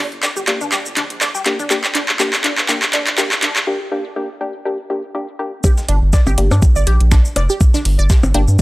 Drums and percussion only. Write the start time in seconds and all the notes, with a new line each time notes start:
0.12 closed hi-hat
0.23 snare, clap, closed hi-hat, shaker
0.37 shaker
0.48 clap, closed hi-hat
0.61 shaker
0.72 clap, closed hi-hat, shaker
0.86 shaker
0.97 clap, closed hi-hat
1.10 closed hi-hat
1.21 snare, clap, closed hi-hat, shaker
1.35 shaker
1.46 clap, closed hi-hat
1.59 closed hi-hat, shaker
1.70 clap, closed hi-hat, shaker
1.84 snare, clap, shaker
1.95 clap, closed hi-hat
2.09 clap
2.20 snare, clap, closed hi-hat, shaker
2.33 clap, shaker
2.44 clap, closed hi-hat
2.58 clap, shaker
2.69 clap, closed hi-hat, shaker
2.82 clap, shaker
2.93 clap, closed hi-hat
3.07 clap, closed hi-hat
3.18 snare, clap, closed hi-hat, shaker
3.32 clap, shaker
3.43 clap, closed hi-hat
3.56 clap, shaker
5.64 kick, closed hi-hat, percussion blips, shaker
5.77 snare, shaker
5.89 closed hi-hat
6.13 kick, snare, closed hi-hat, shaker
6.27 percussion blips, shaker
6.38 closed hi-hat
6.51 percussion blips, shaker
6.62 kick, closed hi-hat, shaker
6.76 shaker
6.87 closed hi-hat
7.01 closed hi-hat
7.12 finger snap, kick, snare, closed hi-hat, shaker
7.25 shaker
7.36 closed hi-hat, percussion blips
7.50 shaker
7.61 kick, closed hi-hat, shaker
7.74 snare, shaker
7.85 closed hi-hat, open hi-hat
7.99 closed hi-hat
8.10 kick, snare, closed hi-hat, shaker
8.23 percussion blips, shaker
8.34 closed hi-hat
8.48 shaker